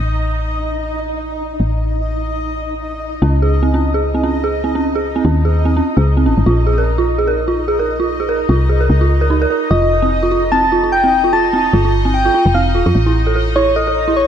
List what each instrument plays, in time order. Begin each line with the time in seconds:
Already playing: fm bass A1, synth texture D#4 D#5
1.60 fm bass A1
3.22 fm bass C#2, synth bell C#4, synth texture D#4 D#5
3.42 synth bell G#4
3.63 synth bell C4
3.74 synth bell C#4
3.94 synth bell G#4
4.14 synth bell C4
4.23 synth bell C#4
4.44 synth bell G#4
4.64 synth bell C4
4.75 synth bell C#4
4.96 synth bell G#4
5.16 synth bell C4
5.25 fm bass D#2, synth bell C#4
5.45 synth bell G#4
5.65 synth bell C4
5.77 synth bell C#4
5.97 fm bass C#2, synth bell G#4
6.17 synth bell C4
6.26 fm bass G#1, synth bell C#4
6.37 fm bass G#1
6.46 fm bass A#1, synth bell F4
6.67 synth bell G#4
6.78 synth bell A#4
6.98 synth bell F4
7.19 synth bell G#4
7.27 synth bell A#4
7.48 synth bell F4
7.68 synth bell G#4
7.79 synth bell A#4
8.00 synth bell F4
8.20 synth bell G#4
8.29 synth bell A#4
8.49 fm bass C2, synth bell F4
8.69 synth bell G#4
8.81 synth bell A#4
8.90 fm bass C#2
9.01 synth bell F4
9.21 synth bell A#4
9.30 synth bell D#4
9.42 synth bell A#4
9.50 synth bell A#4
9.71 fm bass F1, synth bell F4, soft synth lead D#5
9.82 synth bell F4
10.02 synth bell C4
10.23 synth bell F4
10.32 synth bell F4
10.52 synth bell C4, soft synth lead A5
10.72 synth bell F4
10.83 synth bell F4
10.92 soft synth lead G5
11.04 synth bell C4
11.24 synth bell F4
11.33 synth bell F4, soft synth lead A5
11.53 synth bell C4
11.73 fm bass G1, synth bell F4
11.85 synth bell F4
12.05 synth bell C4
12.14 soft synth lead G5
12.25 synth bell F4
12.34 synth bell F4
12.46 fm bass F1
12.54 synth bell C4, soft synth lead F5
12.75 fm bass D#1, synth bell F4
12.86 fm bass F2, synth bell F4
12.95 fm bass A1
13.06 synth bell E4
13.27 synth bell A4
13.36 synth bell A4
13.56 synth bell E4, soft synth lead C#5
13.76 synth bell A4, soft synth lead D#5
13.87 synth bell A4
14.08 synth bell E4
14.17 soft synth lead C#5